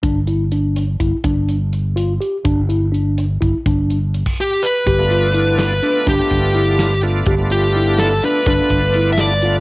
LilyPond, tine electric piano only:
\new Staff \with { instrumentName = "Tine electric piano" } { \time 5/8 \key g \mixolydian \tempo 4 = 125 d'8 e'8 d'4 e'8 | d'4 r8 f'8 g'8 | d'8 e'8 d'4 e'8 | d'4 r4. |
g'8 f'8 e'4 d'8 | d'4 e'4 f'8 | g'8 f'8 e'4 d'8 | d'4 e'4 f'8 | }